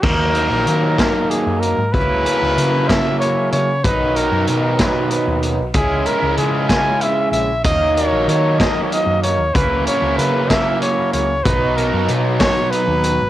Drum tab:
CC |x-----|------|------|------|
HH |-xxxxx|xxxxxx|xxxxxx|xxxxxx|
SD |---o--|---o--|---o--|---o--|
BD |o--o--|o--o--|o--o--|o--o--|

CC |------|------|------|
HH |xxxxxx|xxxxxx|xxxxxx|
SD |---o--|---o--|---o--|
BD |o--o--|o--o--|o--o--|